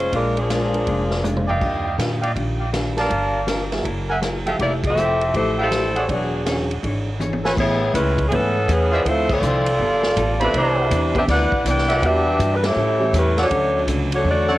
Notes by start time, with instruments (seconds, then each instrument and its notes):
Already playing: saxophone section G#3 C#4 F4 C5
0.12 upright bass A#1, hollow-body jazz guitar A#2 G#3 D4 F4, saxophone section G#3 D4 F4 A#4, kick, ride
0.37 saxophone section F3 A#3 D4 G#4, ride
0.49 hollow-body jazz guitar A#2 G#3 D4 F4, snare, hi-hat pedal, ride
0.73 grand piano G#3 D4 F4 A#4, ride
0.87 upright bass F1, hollow-body jazz guitar A#2 G#3 D4 F4, kick, ride
1.11 snare
1.23 hollow-body jazz guitar A#2 G#3 D4 F4, hi-hat pedal, mid tom
1.37 mid tom
1.48 trumpet section D5 D#5 F5 G5, floor tom
1.60 upright bass D#2, hollow-body jazz guitar D#3 G3 D4 F4, kick, crash
1.98 upright bass A#2, hollow-body jazz guitar D#3 G3 D4 F4, snare, hi-hat pedal, ride
2.22 trumpet section D5 D#5 F5 G5, ride
2.35 upright bass A#1, hollow-body jazz guitar D#3 G3 D4 F4, kick, ride
2.72 hollow-body jazz guitar D#3 G3 D4 F4, snare, hi-hat pedal, ride
2.96 grand piano F3 A#3 D4 G4, trumpet section A#4 D5 F5 A5, snare, ride
3.10 upright bass G1, hollow-body jazz guitar G3 D4 F4 A#4, kick, ride
3.47 hollow-body jazz guitar G3 D4 F4 A#4, snare, hi-hat pedal, ride
3.71 grand piano F#3 A#3 E4 G#4, snare, ride
3.84 upright bass F#1, hollow-body jazz guitar F#3 E4 G#4 A#4, kick, ride
4.08 trumpet section A#4 E5 F#5 G#5
4.22 hollow-body jazz guitar F#3 E4 G#4 A#4, snare, hi-hat pedal, ride
4.45 grand piano F3 A3 E4 G4, trumpet section A4 E5 F5 G5, ride
4.59 upright bass F1, hollow-body jazz guitar F3 A3 E4 G4, saxophone section A#3 E4 G4 D5, kick, ride
4.84 saxophone section C4 G4 A4 E5, kick, ride
4.95 grand piano F3 A3 E4 G4, hollow-body jazz guitar F3 A3 E4 G4, hi-hat pedal
5.21 ride
5.34 upright bass A1, hollow-body jazz guitar F3 A3 E4 G4, saxophone section A3 E4 G4 C5, kick, ride
5.58 saxophone section G3 C4 E4, trumpet section A4 E5 F5 G5
5.62 saxophone section A4
5.71 hollow-body jazz guitar F3 A3 E4 G4, snare, hi-hat pedal, ride
5.95 trumpet section G#4 C#5 D5 F#5, ride
6.08 upright bass E1, hollow-body jazz guitar E3 D4 G#4 C#5, grand piano F#3 D4 G#4 C#5, saxophone section F#3 B3 D4 G#4, kick, ride
6.44 hollow-body jazz guitar E3 D4 G#4 C#5, grand piano F#3 C#4 D4 G#4, snare, hi-hat pedal, ride
6.71 ride
6.82 upright bass G#1, hollow-body jazz guitar E3 D4 G#4 C#5, kick, ride
7.19 hollow-body jazz guitar E3 D4 G#4 C#5, hi-hat pedal, high tom
7.33 high tom
7.44 trumpet section A4 B4 C#5 G#5, snare
7.56 upright bass A1, grand piano E3 A3 B3 C#4 G#4, hollow-body jazz guitar A3 C#4 G#4 B4, saxophone section B3 E4 G#4 C#5, kick, crash
7.93 upright bass C#2, saxophone section G#3 C#4 E4 B4, hollow-body jazz guitar A3 C#4 G#4 B4, kick, hi-hat pedal, ride
8.18 kick, ride
8.28 upright bass G#2, grand piano E3 A3, hollow-body jazz guitar A3 C#4, saxophone section G#4, kick, ride
8.32 saxophone section E3 B3 C#4 A4, grand piano B3 C#4 B4, hollow-body jazz guitar G#4 B4
8.68 upright bass E2, saxophone section E3 B3 C#4 G#4, hollow-body jazz guitar A3 C#4 G#4 B4, kick, hi-hat pedal, ride
8.92 trumpet section F4 C5 D5 E5
9.05 upright bass D2, hollow-body jazz guitar D3 F3 C4 E4, saxophone section A3 E4 F4 C5, kick, ride
9.30 saxophone section C4 F4 A4 D5, kick, crash
9.42 upright bass C2, hollow-body jazz guitar D3 F3 C4 E4, hi-hat pedal
9.66 ride
9.79 upright bass G1, hollow-body jazz guitar G3 B3 F4 A4, kick
10.03 snare
10.16 upright bass A1, hollow-body jazz guitar G3 B3 F4 A4, kick, hi-hat pedal, ride
10.40 grand piano E3 B3 C4 D4 G4, saxophone section A3 D4 F4 B4, trumpet section C5 D5 E5 B5, ride
10.53 upright bass C2, hollow-body jazz guitar C3 E3 B3 D4, saxophone section G3 D4 E4 C5, kick, ride
10.90 upright bass E2, hollow-body jazz guitar C3 E3 B3 D4, kick, hi-hat pedal, ride
11.15 grand piano E3 B3 C4 D4 G4, saxophone section D4 G4 B4 E5, kick, ride
11.27 upright bass D2, hollow-body jazz guitar C3 E3 B3 D4, saxophone section E4 B4 D5 F#5, kick, snare, ride
11.52 kick
11.65 upright bass C2, hollow-body jazz guitar C3 E3 B3 D4, saxophone section E4 B4 D5 G5, kick, hi-hat pedal, ride
11.78 snare
11.88 trumpet section G4 D5 E5 F#5, snare, ride
12.01 upright bass E2, hollow-body jazz guitar E3 G3 D4 F#4, grand piano E3 G3 B3 D4 F#4, saxophone section D4 G4 B4 E5, kick, ride
12.39 upright bass G2, hollow-body jazz guitar E3 G3 D4 F#4, kick, hi-hat pedal, ride
12.55 saxophone section B4
12.63 saxophone section A3 E4 G4 C#5, snare, ride
12.76 hollow-body jazz guitar A2 G3 C#4 E4, upright bass A2
12.99 grand piano E3 G3 A3 C#4 G4
13.13 upright bass E2, hollow-body jazz guitar A2 G3 C#4 E4, saxophone section G3 C#4 E4 B4, kick, hi-hat pedal, ride
13.37 trumpet section A4 C#5 D5 F#5, snare, ride
13.41 saxophone section A3 D4 F#4 C#5
13.49 upright bass D2, grand piano D3 F#3 A3 C#4 F#4, hollow-body jazz guitar D3 F#3 A3 C#4, kick, ride
13.86 upright bass C#2, hollow-body jazz guitar D3 F#3 A3 C#4, kick, hi-hat pedal, ride
14.12 saxophone section A3 D4 F#4 C#5, ride
14.23 upright bass E2, hollow-body jazz guitar D3 F#3 A3 C#4, kick
14.29 saxophone section A3 F#4 C#5 D5
14.48 grand piano D3 F#3 A3 C#4 F#4, trumpet section A4 C#5 D5 F#5